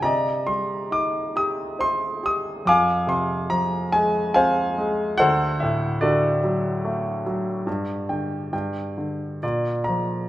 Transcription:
0.02 C3 D5 D#5 A#5
0.47 G3 C6
0.91 D#4 D6
1.36 G4 D#6
1.79 C5 C6
2.23 G4 D#6
2.65 F2 F5 G#5 D6
3.07 C3 C6
3.50 F3 A#5
3.92 G#3 G#5
4.34 C4 C5 F5 G#5
4.78 G#3
5.18 D2 A4 C5 F#5
5.60 A2 E5
6.01 D3 F#4 A4 D5
6.44 F#3
6.85 A3
7.26 F#3
7.67 G2
8.09 D3 G5
8.53 G2 G5
8.98 D3
9.43 A#2 D5
9.84 A#5
9.89 F3

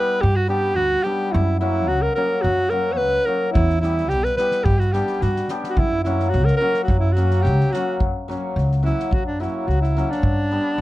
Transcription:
Already playing: G3 B3 E4 G4 B4
0.21 G2 G4
0.36 F#4
0.48 G3 B3 D4 G4
0.75 D2 F#4
1.03 G3 B3 D4 G4
1.32 F#2 E4
1.60 F#3 A#3 C#4 E4 F#4
1.88 C#2 F#4
2.02 A#4
2.15 F#3 A#3 C#4 F#4 A#4
2.42 F#2 F#4
2.70 F#3 A#3 C#4 F#4 A#4
2.92 C#5
2.97 C#2 B4
3.25 F#3 A#3 C#4 F#4 A#4
3.52 E2 E4, kick
3.69 snare
3.80 G3 B3 E4, snare
3.84 E4 G4
3.97 snare
4.09 B1 G4, snare
4.24 B4, snare
4.37 G3 B3 E4 G4 B4, snare
4.51 snare
4.64 G2 G4, kick
4.79 F#4, snare
4.92 G3 B3 D4 G4, snare
5.07 snare
5.21 G2 F#4, snare
5.36 snare
5.48 G3 B3 D4 G4, snare
5.63 snare
5.70 F#4
5.77 F#2 E4, kick
6.03 F#3 A#3 C#4 E4 F#4, snare
6.20 snare
6.30 F#4, snare
6.34 C#2
6.45 A#4, snare
6.56 A#4
6.60 F#3 A#3 C#4 F#4
6.74 snare
6.84 F#4
6.88 F#2, kick
6.99 E4
7.13 F#3 F#4, snare
7.17 A#3 C#4 F#4
7.30 snare
7.42 C#2 G4, snare
7.60 snare
7.71 F#3 A#3 C#4 F#4, snare
8.00 F#2, kick
8.28 F#3 A#3 C#4 F#4, snare
8.56 C#2, snare
8.71 snare
8.83 F#3 A#3 C#4 E4 F#4, snare
8.99 snare
9.11 F#2 F#4, kick
9.26 D4
9.40 F#3 A#3 C#4 E4 F#4, snare
9.68 C#2 F#4, snare
9.82 E4, snare
9.97 F#3 A#3 C#4 F#4, snare
10.11 D4, snare
10.23 G2, kick
10.51 G3 B3 D4 G4

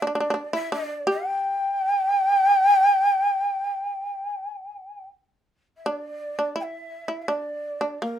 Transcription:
0.02 D4 D5 E5
0.07 D4
0.15 D4
0.20 D4
0.30 D4
0.53 E4 E5
0.72 D4 D5
1.07 G4 G5
5.77 E5
5.86 D4 D5
6.39 D4
6.56 E4
6.60 E5 G5
7.08 E4
7.22 E5
7.28 D4
7.32 D5
7.81 D4
8.02 A#3 A#4

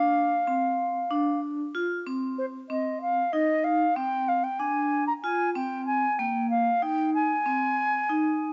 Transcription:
Already playing: D4 F5
0.47 C4
1.11 D4
1.75 F4
2.07 C4
2.38 C5
2.69 C4 D#5
3.01 F5
3.32 D#4 D#5
3.64 F5
3.95 C4 G5
4.28 F5
4.43 G5
4.59 D4 G#5
5.07 A#5
5.22 F4 G#5
5.54 C4 G5
5.86 G#5
6.18 A#3 G5
6.50 F5
6.82 D#4 G5
7.14 G#5
7.46 C4
8.09 D#4

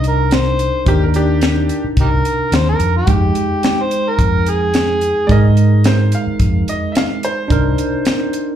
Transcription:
Already playing: C2 D4 D#4 A#4
0.04 closed hi-hat
0.08 A#4
0.31 C5, snare, closed hi-hat
0.59 closed hi-hat
0.86 D#2 D4 D#4 G4 A#4, kick, closed hi-hat
1.03 A#4
1.14 D4 G4, closed hi-hat
1.41 snare, closed hi-hat
1.69 closed hi-hat
1.84 muted fingered electric bass stroke
1.97 C2 D#4 G4 A#4, kick, closed hi-hat
2.25 closed hi-hat
2.52 D#2 C5, snare, closed hi-hat
2.69 A#4
2.80 F2, closed hi-hat
2.97 G4
3.07 F2 G#3 D#4 G5, kick, closed hi-hat
3.35 closed hi-hat
3.63 snare, closed hi-hat
3.82 C5
3.91 closed hi-hat
4.09 A#4
4.19 F2, kick, closed hi-hat
4.46 G#4, closed hi-hat
4.74 snare, closed hi-hat
5.01 closed hi-hat
5.27 G#2 G#3 D#4 D5, kick, closed hi-hat
5.31 A#4 D#5
5.57 closed hi-hat
5.84 C5, snare, closed hi-hat
6.12 F5, closed hi-hat
6.27 muted fingered electric bass stroke
6.40 F2, kick, closed hi-hat
6.68 D#5, closed hi-hat
6.92 E5, closed hi-hat
6.97 F5, snare
7.23 C5, closed hi-hat
7.48 C2 D4 D#4 A#4, kick, closed hi-hat
7.78 closed hi-hat
8.05 snare, closed hi-hat
8.33 closed hi-hat

